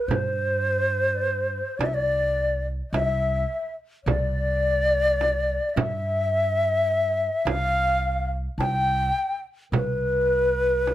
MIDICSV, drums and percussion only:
0, 0, Header, 1, 2, 480
1, 0, Start_track
1, 0, Tempo, 1134216
1, 1716, Time_signature, 10, 3, 24, 8
1, 4632, End_track
2, 0, Start_track
2, 0, Title_t, "Frame drum"
2, 45, Note_on_c, 9, 64, 74
2, 88, Note_off_c, 9, 64, 0
2, 764, Note_on_c, 9, 64, 67
2, 807, Note_off_c, 9, 64, 0
2, 1245, Note_on_c, 9, 64, 66
2, 1288, Note_off_c, 9, 64, 0
2, 1724, Note_on_c, 9, 64, 71
2, 1767, Note_off_c, 9, 64, 0
2, 2205, Note_on_c, 9, 64, 56
2, 2247, Note_off_c, 9, 64, 0
2, 2443, Note_on_c, 9, 64, 90
2, 2485, Note_off_c, 9, 64, 0
2, 3161, Note_on_c, 9, 64, 72
2, 3203, Note_off_c, 9, 64, 0
2, 3642, Note_on_c, 9, 64, 60
2, 3684, Note_off_c, 9, 64, 0
2, 4119, Note_on_c, 9, 64, 82
2, 4161, Note_off_c, 9, 64, 0
2, 4601, Note_on_c, 9, 64, 53
2, 4632, Note_off_c, 9, 64, 0
2, 4632, End_track
0, 0, End_of_file